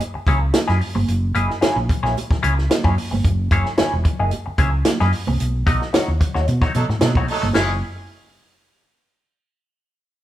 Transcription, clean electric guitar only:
0.14 muted clean electric guitar stroke medium
0.28 0.43 A#3 medium
0.28 0.41 E4 medium
0.28 0.41 G#4 medium
0.28 0.40 C#5 medium
0.41 muted clean electric guitar stroke medium
0.53 muted clean electric guitar stroke soft
0.67 0.79 A#3 medium
0.67 0.79 E4 medium
0.67 0.80 G#4 medium
0.67 0.80 D#5 medium
0.80 muted clean electric guitar stroke soft
0.95 muted clean electric guitar stroke medium
1.35 1.50 A#3 medium
1.35 1.50 E4 loud
1.35 1.51 G#4 medium
1.35 1.51 D#5 medium
1.61 1.77 A#3 medium
1.61 1.77 E4 medium
1.61 1.77 G#4 loud
1.61 1.77 C#5 medium
1.90 muted clean electric guitar stroke soft
2.03 2.15 A#3 medium
2.03 2.14 E4 medium
2.03 2.14 G#4 medium
2.03 2.14 C#5 medium
2.31 muted clean electric guitar stroke soft
2.43 2.58 A#3 medium
2.43 2.56 E4 loud
2.43 2.56 G#4 medium
2.43 2.55 C#5 loud
2.56 muted clean electric guitar stroke soft
2.70 muted clean electric guitar stroke soft
2.84 2.96 A#3 medium
2.84 2.96 E4 medium
2.84 2.97 G#4 medium
2.84 2.97 C#5 medium
2.98 muted clean electric guitar stroke soft
3.11 muted clean electric guitar stroke soft
3.52 3.67 A#3 medium
3.52 3.67 E4 medium
3.52 3.67 G#4 loud
3.52 3.67 C#5 loud
3.77 3.93 A#3 medium
3.77 3.93 E4 medium
3.77 3.93 G#4 medium
3.77 3.93 C#5 loud
4.04 muted clean electric guitar stroke medium
4.20 4.30 A#3 medium
4.20 4.30 E4 soft
4.20 4.30 G#4 medium
4.20 4.30 D#5 medium
4.46 muted clean electric guitar stroke soft
4.58 4.74 A#3 medium
4.58 4.72 E4 loud
4.58 4.72 G#4 medium
4.58 4.71 C#5 medium
4.73 muted clean electric guitar stroke soft
4.86 muted clean electric guitar stroke soft
5.00 5.12 A#3 medium
5.00 5.13 E4 medium
5.00 5.13 G#4 medium
5.00 5.14 D#5 medium
5.13 muted clean electric guitar stroke soft
5.28 muted clean electric guitar stroke medium
5.67 5.82 A3 medium
5.67 5.82 D#4 medium
5.67 5.82 F#4 medium
5.67 5.82 D#5 loud
5.93 6.08 A3 medium
5.93 6.09 D#4 medium
5.93 6.09 F#4 medium
5.93 6.09 C#5 loud
6.20 muted clean electric guitar stroke soft
6.34 6.46 A3 soft
6.34 6.46 D#4 medium
6.34 6.46 F#4 medium
6.34 6.45 C#5 medium
6.48 muted clean electric guitar stroke soft
6.62 6.73 A3 medium
6.62 6.74 D#4 medium
6.62 6.73 F#4 medium
6.62 6.74 C#5 loud
6.74 muted clean electric guitar stroke medium
6.89 muted clean electric guitar stroke medium
7.02 muted clean electric guitar stroke soft
7.17 7.26 A3 medium
7.17 7.27 D#4 medium
7.17 7.28 F#4 medium
7.17 7.28 C#5 medium
7.28 muted clean electric guitar stroke soft
7.42 muted clean electric guitar stroke medium
7.54 7.72 A#3 medium
7.54 7.72 E4 medium
7.54 7.73 G#4 loud
7.54 7.73 C#5 loud

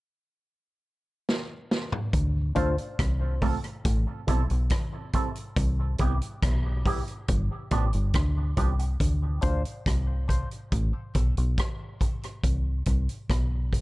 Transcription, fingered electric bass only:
2.14 2.52 D2 loud
2.57 2.76 D2 medium
3.00 3.57 C2 medium
3.85 4.05 A1 loud
4.28 4.48 B1 medium
4.51 4.69 B1 medium
5.57 5.95 C2 medium
6.00 6.19 C2 medium
6.43 7.00 B1 medium
7.29 7.48 G1 loud
7.72 7.91 A1 medium
7.94 8.12 G1 medium
8.15 8.52 D2 medium
8.58 8.96 C2 medium
9.01 9.38 D2 medium
9.43 9.62 D2 medium
9.87 10.44 C2 medium
10.72 10.92 A1 loud
11.15 11.35 B1 medium
11.38 11.56 B1 medium
12.44 12.82 C2 medium
12.87 13.06 C2 medium
13.30 13.81 B1 medium

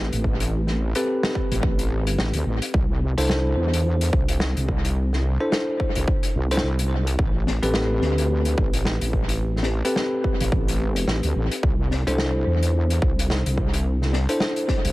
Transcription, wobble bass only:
0.00 0.10 A1 medium
0.13 0.93 A1 medium
1.51 1.61 A1 medium
1.63 2.17 A1 loud
2.18 2.32 A1 loud
2.34 2.44 D2 loud
2.46 2.60 A1 loud
2.74 3.15 C2 loud
3.17 3.55 C2 loud
3.57 4.11 E2 loud
4.13 4.54 C2 loud
4.57 5.38 C2 medium
5.96 6.06 C2 medium
6.35 6.61 C2 medium
6.63 7.17 C2 loud
7.19 7.60 A1 loud
7.63 8.00 A1 loud
8.02 8.56 D2 loud
8.58 8.99 A1 medium
9.01 9.82 A1 loud
10.41 10.50 A1 loud
10.52 11.06 A1 loud
11.07 11.21 A1 loud
11.24 11.33 D2 loud
11.36 11.49 A1 loud
11.63 12.04 C2 medium
12.07 12.44 C2 loud
12.46 13.00 E2 loud
13.02 13.43 C2 loud
13.46 14.27 C2 medium
14.85 14.92 C2 loud

